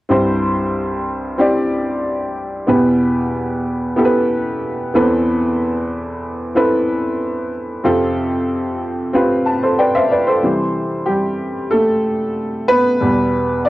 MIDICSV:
0, 0, Header, 1, 2, 480
1, 0, Start_track
1, 0, Key_signature, 0, "major"
1, 0, Tempo, 645856
1, 71, Time_signature, 4, 2, 24, 8
1, 10175, End_track
2, 0, Start_track
2, 0, Title_t, "Upright piano"
2, 0, Program_c, 0, 0
2, 65, Note_on_c, 0, 60, 59
2, 69, Note_on_c, 0, 64, 53
2, 73, Note_on_c, 0, 36, 46
2, 73, Note_on_c, 0, 43, 50
2, 76, Note_on_c, 0, 67, 55
2, 80, Note_on_c, 0, 72, 63
2, 215, Control_c, 0, 64, 127
2, 766, Note_off_c, 0, 60, 0
2, 767, Note_off_c, 0, 64, 0
2, 771, Note_off_c, 0, 67, 0
2, 773, Note_off_c, 0, 72, 0
2, 1025, Note_on_c, 0, 60, 54
2, 1030, Note_on_c, 0, 64, 52
2, 1036, Note_on_c, 0, 67, 57
2, 1040, Note_on_c, 0, 74, 59
2, 1726, Note_off_c, 0, 60, 0
2, 1728, Note_off_c, 0, 64, 0
2, 1732, Note_off_c, 0, 67, 0
2, 1734, Note_off_c, 0, 74, 0
2, 1965, Note_off_c, 0, 43, 0
2, 1966, Note_off_c, 0, 36, 0
2, 1985, Note_on_c, 0, 59, 58
2, 1991, Note_on_c, 0, 64, 53
2, 1993, Note_on_c, 0, 47, 54
2, 1994, Note_on_c, 0, 40, 50
2, 1996, Note_on_c, 0, 67, 57
2, 1999, Note_on_c, 0, 71, 68
2, 2004, Control_c, 0, 64, 0
2, 2140, Control_c, 0, 64, 127
2, 2686, Note_off_c, 0, 59, 0
2, 2689, Note_off_c, 0, 64, 0
2, 2692, Note_off_c, 0, 67, 0
2, 2693, Note_off_c, 0, 71, 0
2, 2945, Note_on_c, 0, 59, 60
2, 2950, Note_on_c, 0, 64, 52
2, 2956, Note_on_c, 0, 67, 54
2, 2962, Note_on_c, 0, 69, 58
2, 3007, Note_off_c, 0, 69, 0
2, 3009, Note_on_c, 0, 71, 69
2, 3645, Note_off_c, 0, 47, 0
2, 3646, Note_off_c, 0, 40, 0
2, 3647, Note_off_c, 0, 59, 0
2, 3649, Note_off_c, 0, 64, 0
2, 3652, Note_off_c, 0, 67, 0
2, 3669, Note_on_c, 0, 59, 55
2, 3671, Note_off_c, 0, 71, 0
2, 3675, Note_on_c, 0, 52, 50
2, 3675, Note_on_c, 0, 64, 63
2, 3676, Note_on_c, 0, 40, 57
2, 3679, Note_on_c, 0, 69, 63
2, 3682, Note_on_c, 0, 71, 71
2, 3686, Control_c, 0, 64, 0
2, 3717, Note_on_c, 0, 60, 60
2, 3720, Note_off_c, 0, 59, 0
2, 3795, Control_c, 0, 64, 127
2, 4444, Note_off_c, 0, 64, 0
2, 4446, Note_off_c, 0, 69, 0
2, 4447, Note_off_c, 0, 71, 0
2, 4464, Note_off_c, 0, 60, 0
2, 4868, Note_on_c, 0, 60, 56
2, 4873, Note_on_c, 0, 64, 61
2, 4876, Note_on_c, 0, 69, 54
2, 4880, Note_on_c, 0, 71, 66
2, 5566, Note_off_c, 0, 40, 0
2, 5566, Note_off_c, 0, 52, 0
2, 5568, Note_off_c, 0, 60, 0
2, 5570, Note_off_c, 0, 64, 0
2, 5572, Note_off_c, 0, 69, 0
2, 5574, Note_off_c, 0, 71, 0
2, 5826, Note_on_c, 0, 60, 60
2, 5832, Note_on_c, 0, 48, 56
2, 5832, Note_on_c, 0, 65, 62
2, 5834, Note_on_c, 0, 41, 58
2, 5835, Note_on_c, 0, 67, 58
2, 5840, Note_on_c, 0, 69, 74
2, 5844, Control_c, 0, 64, 0
2, 5955, Control_c, 0, 64, 127
2, 6526, Note_off_c, 0, 60, 0
2, 6530, Note_off_c, 0, 65, 0
2, 6531, Note_off_c, 0, 67, 0
2, 6533, Note_off_c, 0, 69, 0
2, 6787, Note_on_c, 0, 60, 67
2, 6794, Note_on_c, 0, 65, 59
2, 6797, Note_on_c, 0, 67, 53
2, 6801, Note_on_c, 0, 71, 65
2, 7030, Note_on_c, 0, 81, 53
2, 7038, Note_off_c, 0, 71, 0
2, 7156, Note_on_c, 0, 72, 47
2, 7160, Note_on_c, 0, 69, 41
2, 7255, Note_off_c, 0, 81, 0
2, 7269, Note_off_c, 0, 72, 0
2, 7271, Note_off_c, 0, 69, 0
2, 7274, Note_on_c, 0, 74, 53
2, 7275, Note_on_c, 0, 79, 55
2, 7277, Note_on_c, 0, 71, 42
2, 7386, Note_off_c, 0, 79, 0
2, 7388, Note_off_c, 0, 74, 0
2, 7390, Note_off_c, 0, 71, 0
2, 7394, Note_on_c, 0, 76, 60
2, 7394, Note_on_c, 0, 77, 55
2, 7399, Note_on_c, 0, 72, 50
2, 7486, Note_off_c, 0, 60, 0
2, 7490, Note_off_c, 0, 65, 0
2, 7491, Note_off_c, 0, 67, 0
2, 7508, Note_off_c, 0, 76, 0
2, 7511, Note_off_c, 0, 72, 0
2, 7513, Note_on_c, 0, 74, 51
2, 7519, Note_on_c, 0, 71, 44
2, 7627, Note_off_c, 0, 74, 0
2, 7631, Note_off_c, 0, 71, 0
2, 7631, Note_on_c, 0, 72, 47
2, 7638, Note_on_c, 0, 69, 47
2, 7722, Note_off_c, 0, 48, 0
2, 7723, Note_off_c, 0, 41, 0
2, 7729, Note_off_c, 0, 77, 0
2, 7748, Note_on_c, 0, 48, 46
2, 7752, Note_on_c, 0, 52, 43
2, 7755, Note_on_c, 0, 55, 49
2, 7763, Control_c, 0, 64, 0
2, 7860, Note_off_c, 0, 72, 0
2, 7864, Note_off_c, 0, 69, 0
2, 7870, Control_c, 0, 64, 127
2, 8216, Note_on_c, 0, 67, 61
2, 8222, Note_off_c, 0, 55, 0
2, 8233, Note_on_c, 0, 55, 51
2, 8441, Note_off_c, 0, 48, 0
2, 8442, Note_off_c, 0, 52, 0
2, 8683, Note_off_c, 0, 55, 0
2, 8700, Note_on_c, 0, 69, 75
2, 8718, Note_on_c, 0, 57, 52
2, 8719, Note_off_c, 0, 67, 0
2, 9405, Note_off_c, 0, 57, 0
2, 9424, Note_on_c, 0, 71, 100
2, 9440, Note_on_c, 0, 59, 60
2, 9447, Note_off_c, 0, 69, 0
2, 9665, Note_on_c, 0, 40, 49
2, 9670, Note_on_c, 0, 47, 46
2, 9674, Note_on_c, 0, 55, 50
2, 9682, Control_c, 0, 64, 0
2, 9820, Control_c, 0, 64, 127
2, 10125, Note_off_c, 0, 59, 0
2, 10144, Note_on_c, 0, 74, 77
2, 10169, Note_off_c, 0, 71, 0
2, 10175, Note_off_c, 0, 40, 0
2, 10175, Note_off_c, 0, 47, 0
2, 10175, Note_off_c, 0, 55, 0
2, 10175, Note_off_c, 0, 74, 0
2, 10175, End_track
0, 0, End_of_file